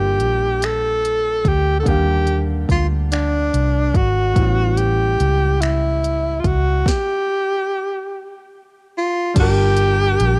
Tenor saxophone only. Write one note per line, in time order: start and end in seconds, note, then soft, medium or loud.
0.00 0.67 G4 medium
0.65 1.50 A4 medium
1.48 1.79 G4 medium
1.80 1.90 A4 medium
1.88 2.43 G4 medium
2.72 2.88 F4 medium
3.13 3.98 D4 medium
3.96 4.79 F#4 medium
4.78 5.63 G4 medium
5.61 6.41 E4 medium
6.40 6.48 F4 medium
6.47 6.89 F#4 medium
6.88 8.54 G4 medium
8.98 9.35 F4 medium
9.40 10.39 G4 loud